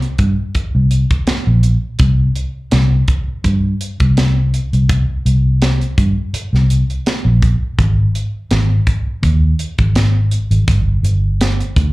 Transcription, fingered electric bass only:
0.19 0.35 G2 loud
0.55 muted fingered electric bass stroke soft
0.75 1.04 C2 medium
1.47 1.76 A#1 medium
2.00 2.29 C2 loud
2.72 3.02 C2 loud
3.44 3.73 G2 medium
4.00 4.58 C2 medium
4.73 5.02 C2 medium
5.26 5.84 C2 medium
5.98 6.14 G2 loud
6.33 muted fingered electric bass stroke soft
6.53 6.82 C2 medium
7.25 7.54 A#1 medium
7.78 8.08 G#1 medium
8.51 8.80 G#1 medium
9.23 9.52 D#2 medium
9.78 10.37 G#1 medium
10.51 10.64 G#1 medium
10.68 10.97 G1 medium
11.03 11.61 G1 medium
11.76 11.92 D2 loud

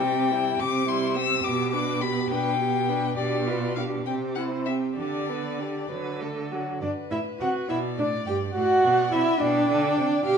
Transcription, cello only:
0.00 0.50 C3 medium
0.60 1.35 C3 medium
1.45 2.21 B2 medium
2.31 3.07 B2 medium
3.18 3.96 B2 medium
4.06 4.87 C3 soft
4.98 5.79 D3 soft
5.91 6.72 D3 soft
6.82 6.90 G2 soft
7.11 7.19 A2 soft
7.40 7.48 C3 soft
7.69 8.00 B2 soft
7.98 8.27 A2 soft
8.27 8.55 G2 soft
8.55 8.63 A2 medium
8.84 9.11 B2 medium
9.12 9.20 C3 medium
9.40 9.68 B2 medium
9.68 9.96 D3 medium
9.97 10.05 C3 soft
10.26 10.38 B2 medium

